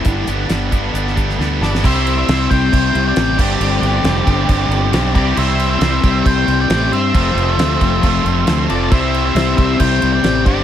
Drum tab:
CC |----------------|x-x-x-x-x-x-x-x-|x-x-x-x-x-x-x-x-|x-x-x-x-x-x-x-x-|
HH |x-x-x-x-x-x-----|----------------|----------------|----------------|
SD |----o----o-oo-oo|----o-------o---|----o-------o---|----o-------o---|
BD |o-----o---o-----|o-----o-o-----o-|------o-o-----o-|------o-o-------|

CC |x-x-x-x-x-x-x-x-|x-x-x-x-x-x-x-x-|
HH |----------------|----------------|
SD |----o-------o---|----o-------o---|
BD |o-----o-o-------|o-----o-o-----o-|